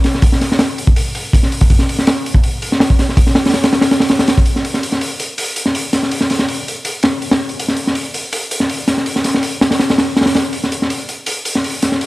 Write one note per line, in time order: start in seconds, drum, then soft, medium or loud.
0.04 snare medium
0.04 open hi-hat medium
0.14 snare soft
0.22 kick loud
0.22 open hi-hat medium
0.32 snare soft
0.41 snare soft
0.41 open hi-hat medium
0.52 snare medium
0.59 snare loud
0.59 open hi-hat medium
0.78 open hi-hat medium
0.87 kick medium
0.96 open hi-hat medium
1.15 open hi-hat medium
1.33 kick medium
1.33 open hi-hat medium
1.43 snare soft
1.52 open hi-hat medium
1.61 kick medium
1.61 open hi-hat medium
1.70 kick loud
1.70 open hi-hat medium
1.79 snare soft
1.89 open hi-hat medium
1.99 snare soft
2.07 snare loud
2.07 open hi-hat medium
2.26 open hi-hat medium
2.34 kick medium
2.44 open hi-hat medium
2.62 open hi-hat medium
2.72 snare soft
2.80 snare loud
2.80 open hi-hat medium
2.90 kick medium
2.99 snare medium
2.99 open hi-hat medium
3.09 snare soft
3.17 kick loud
3.17 open hi-hat medium
3.27 snare soft
3.35 snare loud
3.35 open hi-hat medium
3.45 snare medium
3.45 open hi-hat medium
3.49 snare medium
3.49 open hi-hat medium
3.54 snare medium
3.54 open hi-hat medium
3.64 snare loud
3.64 open hi-hat medium
3.73 snare loud
3.73 open hi-hat medium
3.81 snare loud
3.81 open hi-hat medium
3.91 snare medium
3.91 open hi-hat medium
4.00 snare loud
4.00 open hi-hat medium
4.09 snare loud
4.09 open hi-hat medium
4.19 snare loud
4.19 open hi-hat medium
4.28 snare loud
4.28 open hi-hat medium
4.38 kick loud
4.46 open hi-hat medium
4.56 snare soft
4.65 open hi-hat medium
4.74 snare soft
4.83 open hi-hat medium
4.92 snare soft
5.01 open hi-hat medium
5.20 open hi-hat medium
5.38 open hi-hat medium
5.56 open hi-hat medium
5.66 snare soft
5.75 open hi-hat medium
5.93 snare soft
5.93 open hi-hat medium
6.03 snare soft
6.11 open hi-hat medium
6.21 snare soft
6.30 snare soft
6.30 open hi-hat medium
6.39 snare soft
6.48 open hi-hat medium
6.68 open hi-hat medium
6.85 open hi-hat medium
7.03 snare medium
7.03 open hi-hat medium
7.22 open hi-hat medium
7.31 snare loud
7.31 open hi-hat medium
7.49 open hi-hat soft
7.59 open hi-hat medium
7.68 snare soft
7.76 open hi-hat medium
7.87 snare soft
7.95 open hi-hat medium
8.14 open hi-hat medium
8.33 open hi-hat medium
8.51 open hi-hat medium
8.60 snare soft
8.69 open hi-hat medium
8.88 snare medium
8.88 open hi-hat medium
8.97 snare soft
9.06 open hi-hat medium
9.16 snare soft
9.24 snare soft
9.24 open hi-hat medium
9.34 snare soft
9.43 open hi-hat medium
9.61 snare loud
9.61 open hi-hat medium
9.71 snare medium
9.71 open hi-hat medium
9.79 snare loud
9.79 open hi-hat medium
9.89 snare loud
9.89 open hi-hat medium
9.98 snare loud
9.98 open hi-hat medium
10.17 snare medium
10.17 open hi-hat medium
10.21 snare medium
10.21 open hi-hat medium
10.26 snare medium
10.26 open hi-hat medium
10.34 snare loud
10.34 open hi-hat medium
10.53 open hi-hat medium
10.64 snare soft
10.72 open hi-hat medium
10.82 snare soft
10.90 open hi-hat medium
11.09 open hi-hat medium
11.26 open hi-hat medium
11.45 open hi-hat medium
11.55 snare soft
11.64 open hi-hat medium
11.82 snare soft
11.82 open hi-hat medium
11.92 snare soft
12.01 open hi-hat medium